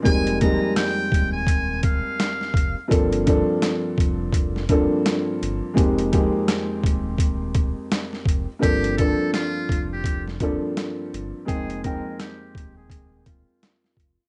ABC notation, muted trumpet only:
X:1
M:4/4
L:1/16
Q:"Swing 16ths" 1/4=84
K:Gphr
V:1 name="Muted trumpet"
a2 b2 g3 a3 f6 | z16 | z16 | G2 =A2 F3 G2 z6 z |
A2 B2 G3 A3 F6 |]